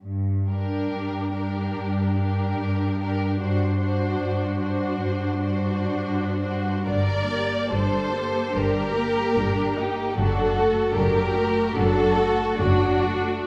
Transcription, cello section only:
\new Staff \with { instrumentName = "Cello section" } { \clef bass \time 4/4 \key g \minor \tempo 4 = 72 g,4 g,4 g,4 g,4 | g,4 g,4 g,4 g,4 | g,4 g,4 g,4 g,4 | fis,4 fis,4 fis,4 fis,4 | }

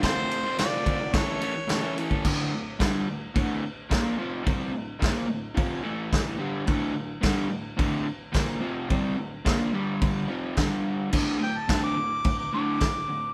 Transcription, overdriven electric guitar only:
\new Staff \with { instrumentName = "Overdriven electric guitar" } { \clef bass \time 4/4 \key d \minor \tempo 4 = 108 <f, c f a c' f'>8. <f a c' f'>16 <f, c f a c' f'>8 <f a c' f'>8 <a, e a cis' e' a'>16 <a cis' e' a'>16 <a cis' e' a'>8 <a, e a cis' e' a'>16 <a cis' e' a'>16 <a cis' e' a'>8 | <d, a, d>8 <d, a,>8 <g, d g>8 <d, a,>8 <d, a, d>8 r8 <bes, f bes>8 <f, c f>8 | <c g c'>8 <d, a,>8 <bes, f bes>8 <d, a,>8 <f, c f>8 <a, e a>4 <g, d g>8 | <d, a, d>8 <d, a,>8 <g, d g>8 <d, a,>8 <d, a, d>8 r8 <bes, f bes>8 <f, c f>8 |
<c g c'>8 <d, a,>8 <bes, f bes>8 <g, d g>4 <f, c f>8 <g, d g>4 | <d, a, d>8 <d, a,>8 <d, a, d>8 <d, a,>8 <d, a,>8 <d, a, d>8 <d, a,>8 <d, a,>8 | }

